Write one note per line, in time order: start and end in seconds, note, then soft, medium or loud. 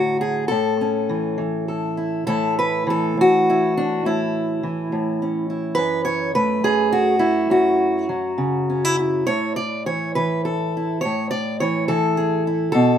0.00 0.48 A2 medium
0.00 0.49 D3 medium
0.00 0.49 F#3 medium
0.00 0.20 F#4 medium
0.21 0.48 G#4 medium
0.48 2.24 A2 medium
0.48 1.67 A4 loud
0.81 2.24 C#4 soft
1.09 1.37 E3 medium
1.38 2.23 E3 medium
1.68 2.24 A4 soft
1.97 2.24 E4 soft
2.26 3.17 A2 medium
2.26 2.86 E3 soft
2.26 5.22 A3 soft
2.26 3.49 E4 soft
2.26 2.57 A4 loud
2.59 2.88 B4 medium
2.87 4.63 E3 medium
2.87 3.18 A4 medium
3.17 4.01 A2 medium
3.17 4.06 F#4 loud
3.50 3.77 E4 medium
3.77 4.05 D4 medium
4.05 4.91 A2 medium
4.05 5.49 E4 medium
4.63 6.35 E3 medium
4.92 5.74 A2 medium
5.22 5.78 C#4 soft
5.50 5.81 E4 soft
5.75 6.63 F#2 medium
5.75 6.04 B4 loud
6.05 6.33 C#5 loud
6.35 8.09 A3 medium
6.35 6.92 B4 medium
6.64 7.49 F#2 medium
6.64 7.19 G#4 loud
6.92 7.50 F#4 medium
7.19 8.08 E4 medium
7.50 9.27 F#2 medium
7.50 9.26 F#4 medium
8.09 9.24 F#3 medium
8.38 9.23 C#3 medium
8.70 8.85 C#4 soft
8.85 8.98 E4 soft
8.99 9.59 E4 soft
9.27 11.01 A2 medium
9.27 9.56 C#5 loud
9.56 9.86 D5 loud
9.86 10.15 E3 medium
9.86 10.15 C#5 medium
10.15 11.01 E3 medium
10.15 10.45 B4 medium
10.45 11.01 A4 medium
10.77 11.01 E4 soft
11.01 11.30 C#5 loud
11.05 12.73 A2 medium
11.31 11.60 D5 loud
11.60 11.88 E3 medium
11.60 11.88 C#5 loud
11.88 12.71 E3 medium
11.88 12.71 A4 medium
12.17 12.46 G#4 medium
12.47 12.72 E4 medium
12.72 12.98 B2 medium
12.72 12.98 A4 loud